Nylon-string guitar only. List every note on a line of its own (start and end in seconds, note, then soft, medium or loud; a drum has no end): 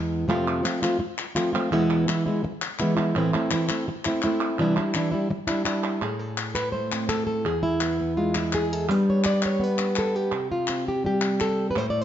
0.00 0.27 E2 medium
0.00 0.27 G#3 medium
0.00 0.29 B3 soft
0.00 0.29 E4 medium
0.28 0.64 F2 medium
0.28 0.64 C3 medium
0.28 0.62 F3 medium
0.28 0.63 A3 medium
0.28 0.63 C4 medium
0.28 0.64 F4 medium
0.63 0.81 F3 medium
0.63 0.82 A3 medium
0.63 0.82 C4 medium
0.63 0.81 F4 medium
0.82 0.99 F3 soft
0.82 0.98 A3 soft
0.82 0.99 C4 soft
0.82 0.99 F4 medium
0.99 muted nylon-string guitar stroke medium
1.35 1.54 F3 medium
1.35 1.54 A3 medium
1.35 1.53 C4 medium
1.35 1.52 F4 medium
1.53 1.72 F3 soft
1.53 1.72 A3 medium
1.53 1.72 C4 medium
1.53 1.71 F4 soft
1.71 2.07 E2 medium
1.71 2.07 B2 medium
1.71 2.06 E3 medium
1.71 2.07 G#3 medium
1.71 2.08 B3 medium
1.71 2.08 E4 loud
2.07 2.25 E3 medium
2.07 2.26 G#3 medium
2.07 2.25 B3 medium
2.07 2.25 E4 medium
2.26 2.43 E3 soft
2.26 2.43 G#3 medium
2.26 2.43 B3 medium
2.26 2.43 E4 medium
2.43 muted nylon-string guitar stroke medium
2.80 2.98 E3 medium
2.80 2.97 G#3 medium
2.80 2.96 B3 medium
2.80 2.95 E4 medium
2.96 3.15 E3 soft
2.96 3.15 G#3 soft
2.96 3.15 B3 medium
2.96 3.14 E4 medium
3.15 3.33 A2 medium
3.15 3.33 E3 medium
3.15 3.33 A3 medium
3.15 3.33 C4 medium
3.15 3.32 E4 medium
3.33 3.51 A3 medium
3.33 3.51 C4 medium
3.33 3.51 E4 medium
3.51 3.69 E3 medium
3.51 3.69 A3 medium
3.51 3.68 C4 medium
3.51 3.68 E4 medium
3.69 3.87 A3 medium
3.69 3.87 C4 medium
3.69 3.86 E4 medium
3.88 muted nylon-string guitar stroke medium
4.06 4.24 A3 medium
4.06 4.24 C4 medium
4.06 4.23 E4 medium
4.24 4.60 A3 soft
4.24 4.59 C4 medium
4.24 4.59 E4 medium
4.59 4.76 C3 medium
4.59 4.77 E3 medium
4.59 4.77 G3 medium
4.59 4.77 D4 medium
4.59 4.76 E4 medium
4.77 4.94 G3 medium
4.77 4.95 D4 medium
4.77 4.94 E4 medium
4.94 5.12 E3 medium
4.94 5.12 G3 medium
4.94 5.12 D4 medium
4.94 5.10 E4 medium
5.12 5.30 G3 soft
5.12 5.29 D4 medium
5.12 5.29 E4 medium
5.30 muted nylon-string guitar stroke medium
5.47 5.66 G3 soft
5.47 5.65 D4 medium
5.47 5.64 E4 medium
5.65 6.02 G3 soft
5.65 6.01 D4 medium
5.65 6.01 E4 medium
6.01 7.45 A2 medium
6.01 6.56 G#4 medium
6.19 6.55 A4 medium
6.55 6.72 B4 medium
6.72 7.44 A3 medium
6.72 7.09 C5 medium
6.92 7.44 C4 soft
7.09 7.26 A4 loud
7.27 7.45 A4 medium
7.45 8.89 E2 medium
7.45 7.82 G#4 medium
7.63 8.35 E4 medium
7.82 8.00 B3 soft
8.01 8.17 B3 soft
8.17 8.87 G#3 medium
8.17 8.35 F4 medium
8.36 8.73 E4 medium
8.55 8.90 G#4 loud
8.73 8.91 A4 medium
8.89 10.30 G3 medium
8.89 9.58 B3 soft
8.89 9.78 D4 soft
8.89 9.98 G4 soft
8.89 9.08 B4 loud
9.10 9.25 C#5 loud
9.26 9.43 D5 loud
9.46 9.64 C#5 medium
9.60 10.30 B3 medium
9.60 10.34 B4 loud
9.79 10.30 D4 soft
9.99 10.16 A4 loud
10.16 10.51 G4 medium
10.32 11.73 C3 medium
10.52 10.87 F4 medium
10.69 11.74 C4 soft
10.88 11.05 G4 medium
11.04 11.74 G3 medium
11.04 11.77 G4 medium
11.41 11.67 A4 medium
11.71 11.78 B4 loud
11.76 12.04 A2 medium
11.76 12.04 A3 medium
11.76 12.04 E4 soft
11.76 11.88 C5 medium
11.90 12.01 D5 medium
12.01 12.04 C5 medium